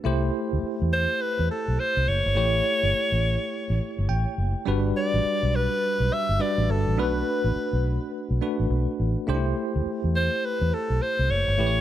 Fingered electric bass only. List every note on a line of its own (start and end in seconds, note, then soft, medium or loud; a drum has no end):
0.05 0.29 C2 medium
0.53 0.61 D2 medium
0.63 muted fingered electric bass stroke soft
0.82 1.05 E2 medium
1.39 1.48 E2 medium
1.68 1.77 B1 medium
1.97 2.05 C2 medium
2.08 2.22 F#1 medium
2.26 2.34 G1 medium
2.36 2.60 A1 loud
2.83 2.92 G1 medium
2.94 muted fingered electric bass stroke soft
3.12 3.36 A1 medium
3.70 3.78 A1 medium
3.99 4.07 G1 medium
4.09 4.24 A1 medium
4.38 4.53 F#1 medium
4.67 4.91 G1 medium
5.14 5.23 A1 medium
5.43 5.67 B1 medium
6.00 6.09 B1 medium
6.29 6.38 G1 medium
6.58 6.67 A1 medium
6.69 6.84 G1 medium
6.87 6.98 A1 medium
6.98 7.21 B1 loud
7.44 7.53 A1 medium
7.56 muted fingered electric bass stroke soft
7.73 7.97 B1 medium
8.30 8.39 B1 medium
8.60 8.68 A1 medium
8.70 8.85 B1 medium
9.00 9.15 A1 medium
9.28 9.52 C2 medium
9.76 9.84 D2 medium
9.86 muted fingered electric bass stroke soft
10.04 10.28 E2 medium
10.61 10.70 E2 medium
10.90 10.99 B1 medium
11.19 11.28 C2 medium
11.29 11.45 F#1 medium
11.48 11.57 G1 medium
11.58 11.81 A1 medium